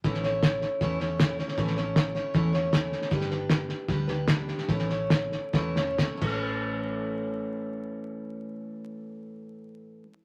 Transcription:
<<
  \new Staff \with { instrumentName = "Steel-string acoustic guitar" } { \time 4/4 \key a \mixolydian \tempo 4 = 146 <a, e a cis' e' cis''>8 <a cis' e' cis''>4. <a, e a cis' e' cis''>8 <a cis' e' cis''>8 <a cis' e' cis''>8 <a cis' e' cis''>8 | <a, e a cis' e' cis''>8 <a cis' e' cis''>4 <a cis' e' cis''>8 <a, e a cis' e' cis''>8 <a cis' e' cis''>8 <a cis' e' cis''>4 | <g d' g' b'>8 <d' g' b'>4. <g d' g' b'>8 <d' g' b'>8 <g d' g' b'>4 | <a, e a cis' e' cis''>8 <a cis' e' cis''>4. <a, e a cis' e' cis''>8 <a cis' e' cis''>8 <a cis' e' cis''>8 <a, e a cis' e' cis''>8~ |
<a, e a cis' e' cis''>1~ | <a, e a cis' e' cis''>1 | }
  \new Staff \with { instrumentName = "Fingered electric bass" } { \clef bass \time 4/4 \key a \mixolydian a,,2 e,2 | a,,2 e,2 | g,,2 d,2 | a,,2 e,,4. a,,8~ |
a,,1~ | a,,1 | }
  \new DrumStaff \with { instrumentName = "Drums" } \drummode { \time 4/4 <bd sn>16 sn16 sn8 <hhp bd sn>8 sn8 <bd sn>8 sn8 <hhp bd sn>8 sn16 sn16 | <bd sn>16 sn16 sn8 <hhp bd sn>8 sn8 <bd sn>8 sn8 <hhp bd sn>8 sn16 sn16 | <bd sn>16 sn16 sn8 <hhp bd sn>8 sn8 <bd sn>8 sn8 <hhp bd sn>8 sn16 sn16 | <bd sn>16 sn16 sn8 <hhp bd sn>8 sn8 <bd sn>8 sn8 <hhp bd sn>8 <cymc bd>8 |
r4 r4 r4 r4 | r4 r4 r4 r4 | }
>>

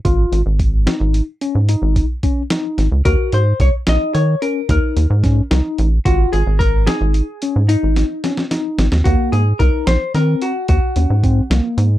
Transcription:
<<
  \new Staff \with { instrumentName = "Hollow-body jazz guitar" } { \time 11/8 \key ees \dorian \tempo 4 = 110 r1 r4. | bes'8 c''8 des''8 ees''8 des''8 bes'8 bes'2 r8 | ges'8 aes'8 bes'8 aes'4. ees'2 r8 | ges'8 aes'8 bes'8 c''8 bes'8 ges'8 ges'2 r8 | }
  \new Staff \with { instrumentName = "Tine electric piano" } { \time 11/8 \key ees \dorian f'4 r8 ees'4 des'8 ees'4 des'8 ees'4 | ges'4 r8 ees'4 des'8 ees'4 des'8 ees'4 | f'4 r8 ees'4 des'8 ees'4 des'8 ees'4 | bes4 ees'4 c'4 r8 des'8 c'8 bes4 | }
  \new Staff \with { instrumentName = "Analog synth bass" } { \clef bass \time 11/8 \key ees \dorian aes,,8 aes,,16 aes,,4 aes,,8 r8 aes,8 aes,,8 r4 r16 aes,,16 des,16 | ees,16 r16 aes,8 c,16 r16 bes,,16 r16 ees8 r8 ees,16 r16 ees,16 aes,8. c,16 r16 a,,8 | aes,,8 aes,,16 aes,,4 aes,,8 r8 aes,8 aes,,8 r4 r16 aes,,16 ees,16 | ees,16 r16 aes,8 c,16 r16 bes,,16 r16 ees8 r8 ees,16 r16 ees,16 aes,8. c,16 r16 aes,8 | }
  \new DrumStaff \with { instrumentName = "Drums" } \drummode { \time 11/8 <hh bd>8 hh8 <hh bd>8 <hh sn>8 hh8 hh8 hh8 <hh bd>8 <hh bd>8 <hh sn>8 <hh sn>8 | <hh bd>8 hh8 <hh bd>8 <hh sn>8 hh8 hh8 <hh bd>8 hh8 <hh bd sn>8 <hh sn>8 hh8 | <hh bd>8 hh8 <hh bd>8 <hh sn>8 hh8 hh8 hh8 <hh sn>8 <hh sn>16 sn16 <hh sn>8 <hh sn>16 sn16 | <hh bd>8 hh8 <hh bd>8 <hh sn>8 <hh sn>8 hh8 <hh bd>8 hh8 <hh bd>8 <hh sn>8 hh8 | }
>>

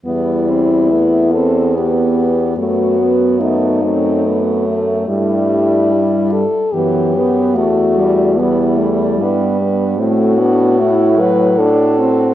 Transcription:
<<
  \new Staff \with { instrumentName = "French horn" } { \time 3/4 \key e \minor \tempo 4 = 73 e'4. a'8 g'4 | fis'4 dis'4. r8 | e'4. a'8 g'4 | fis'4 e'4. r8 |
fis'4. b'8 a'4 | }
  \new Staff \with { instrumentName = "French horn" } { \time 3/4 \key e \minor g4 a8 b4. | b4 a8 c'8 b8 a8~ | a4 g8 r8 b8 b8 | a4 g4 b8 b8 |
c'8 d'8 e'8 fis'4. | }
  \new Staff \with { instrumentName = "French horn" } { \time 3/4 \key e \minor b8 c'8 b8 c'8 b4 | a8 b8 b8 a4. | g4. r8 e8 b8 | a8 g8 b8 a8 g4 |
a8 b8 a8 fis8 d'8 c'8 | }
  \new Staff \with { instrumentName = "French horn" } { \clef bass \time 3/4 \key e \minor e,2. | fis,2. | g,4. r8 fis,4 | e,2 g,4 |
a,2. | }
>>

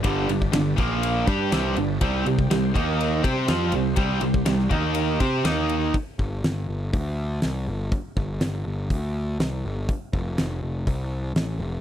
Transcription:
<<
  \new Staff \with { instrumentName = "Tonewheel organ" } { \time 4/4 \key c \major \tempo 4 = 122 <d' g' b' d''>4. <bes f' bes' f''>4 <d' g' b' d''>4. | <c' g' c'' g''>4. <bes ees' bes' ees''>4 <g c' g' c''>4.~ | <g c' g' c''>4. <bes ees' bes' ees''>4 r8 <bes ees' bes' ees''>4 | r1 |
r1 | r1 | }
  \new Staff \with { instrumentName = "Distorted electric guitar" } { \clef bass \time 4/4 \key c \major <g, d g>8 <g, d>8 <g, d>8 <bes, f bes>4 <g d' g'>8 <c g c'>8 <g, d>8 | <c g c'>8 <c g>8 <c g>8 <ees bes ees'>4 <c' g' c''>8 <f c' f'>8 <c g>8 | <c g c'>8 <c g>8 <c g>8 <ees bes ees'>4 <c' g' c''>8 <ees bes ees'>4 | r1 |
r1 | r1 | }
  \new Staff \with { instrumentName = "Overdriven electric guitar" } { \clef bass \time 4/4 \key c \major <g, d g>8 <g, d>8 <g, d>8 <bes, f bes>4 <g d' g'>8 <c g c'>8 <g, d>8 | <c g c'>8 <c g>8 <c g>8 <ees bes ees'>4 <c' g' c''>8 <f c' f'>8 <c g>8 | <c g c'>8 <c g>8 <c g>8 <ees bes ees'>4 <c' g' c''>8 <ees bes ees'>4 | r1 |
r1 | r1 | }
  \new Staff \with { instrumentName = "Picked electric bass" } { \clef bass \time 4/4 \key c \major g,,8 g,,8 g,,8 bes,,4 g,8 c,8 g,,8 | c,8 c,8 c,8 ees,4 c8 f,8 c,8 | c,8 c,8 c,8 ees,4 c8 ees,4 | r8 g,,8 g,,8 g,,8 d,4 c,8 g,,8 |
r8 g,,8 g,,8 g,,8 d,4 c,8 g,,8 | r8 f,,8 f,,8 f,,8 c,4 a,,8 f,,8 | }
  \new DrumStaff \with { instrumentName = "Drums" } \drummode { \time 4/4 <bd cymr>8 cymr16 bd16 <cymr sn>8 <bd cymr>8 cymr8 <bd cymr>8 <cymr sn>8 cymr8 | <bd cymr>8 cymr16 bd16 <cymr sn>8 <bd cymr>8 cymr8 <bd cymr>8 <cymr sn>8 cymr8 | <bd cymr>8 cymr16 bd16 <cymr sn>16 sn16 <bd cymr>8 cymr8 <bd cymr>8 <cymr sn>8 cymr8 | <hho bd>8 bd8 <hho sn>4 <hho bd>4 <hho sn>4 |
<hho bd>8 bd8 <hho sn>4 <hho bd>4 <hho sn>4 | <hho bd>8 bd8 <hho sn>4 <hho bd>4 <hho sn>4 | }
>>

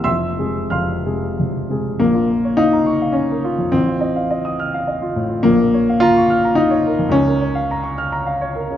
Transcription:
\new Staff \with { instrumentName = "Grand piano" } { \time 3/4 \key f \minor \tempo 4 = 106 << { <e'' c''' e'''>4 <f'' c''' f'''>4. r8 | \key bes \minor bes4 ees'4 des'4 | c'2~ c'8 r8 | bes4 f'4 ees'4 |
des'2~ des'8 r8 | } \\ { <f,, f,>8 <c aes aes'>8 <f,, f,>8 <c aes aes'>8 <f,, f,>8 <c aes aes'>8 | bes,,16 f'16 bes'16 des''16 f''16 bes''16 des'''16 f''16 des''16 bes'16 f'16 f,16 | a,,16 f'16 ees''16 f''16 ees''16 ees'''16 f'''16 f''16 ees''16 f'16 a,16 f'16 | bes,,16 bes'16 des''16 f''16 bes''16 des'''16 f'''16 bes''16 f''16 des''16 bes'16 f,16 |
des,16 bes'16 des''16 f''16 bes''16 des'''16 f'''16 bes''16 f''16 des''16 bes'16 des16 | } >> }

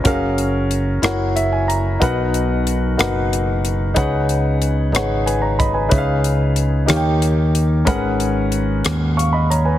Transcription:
<<
  \new Staff \with { instrumentName = "Grand piano" } { \time 6/8 \key fis \major \tempo 4. = 61 << { r2 e''16 gis''16 ais''8 | r2. | r2 <b' gis''>16 <cis'' ais''>16 <dis'' b''>16 <b' gis''>16~ | <b' gis''>16 r2 r8. |
r2 <eis'' cis'''>16 <dis'' b''>16 <cis'' ais''>16 <b' gis''>16 | } \\ { <cis' fis' gis' ais' eis''>4 r8 <e' fis' ais' cis'' fis''>4 r8 | <dis' fis' ais' b' fis''>4 r8 <dis' fis' ais' b' fis''>4 r8 | <dis' gis' b' cis'' fis''>4 r8 <dis' gis' b' cis'' fis''>4 r8 | <dis' gis' b' cis'' e'' eis''>4 r8 <dis' g' ais' cis'' eis'' g''>4 r8 |
<cis' gis' ais' b' fis''>4 r2 | } >> }
  \new Staff \with { instrumentName = "Grand piano" } { \clef bass \time 6/8 \key fis \major r2. | b,4. r4. | cis4. r4. | cis4. dis4. |
gis,4. r4. | }
  \new Staff \with { instrumentName = "Fingered electric bass" } { \clef bass \time 6/8 \key fis \major fis,,4. fis,,4. | b,,4. fis,,4. | cis,4. gis,,4. | cis,4. dis,4. |
gis,,4. dis,4. | }
  \new DrumStaff \with { instrumentName = "Drums" } \drummode { \time 6/8 <hh bd>8 hh8 hh8 <hh ss>8 hh8 hh8 | <hh bd>8 hh8 hh8 <hh ss>8 hh8 hh8 | <hh bd>8 hh8 hh8 <hh ss>8 hh8 <hh bd>8 | <hh bd>8 hh8 hh8 <hh ss>8 hh8 hh8 |
<hh bd>8 hh8 hh8 <hh ss>8 hh8 hh8 | }
>>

